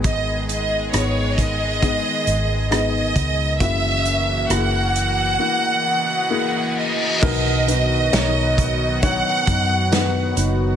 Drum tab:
CC |--------|--------|x-------|
HH |xxxxxxxx|xxxx----|-xxxxxxx|
SD |--r---r-|--r-----|--o---o-|
BD |o--oo--o|o-------|o--ooo--|